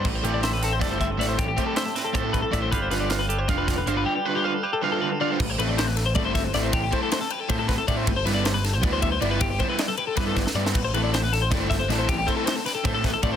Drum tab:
CC |x-------------|--------------|--------------|--------------|
RD |--------------|--------------|--------------|--------------|
HH |--x-x-x-x-x-x-|x-x-x-x-x-x-x-|x-x-x-x-x-x-x-|--------------|
SD |----o-o-o---o-|----o-o-------|--o-o-----o---|--------------|
BD |o-------o-o---|o-o-----o-o-o-|o-------o-o---|--------------|

CC |x-------------|--------------|--------------|--------------|
RD |--x-x-x-x-x-x-|x-x-x-x-x-x-x-|x-x-x-x-x-x-x-|x-x-x-x-x-x---|
HH |--------------|--------------|--------------|--------------|
SD |----o-o---o-o-|----o-----o---|--o-o-o-------|----o---o-oo-o|
BD |o-------o-o---|o-o-----o-o-o-|o-------o-o---|o-o-----o-o---|

CC |x-------------|--------------|
RD |x-x-x-x-x-x-x-|x-x-x-x-x-x-x-|
HH |--------------|--------------|
SD |----o-o-o-o-o-|----o-o---o---|
BD |o-------o-o---|o-o-----o-o-o-|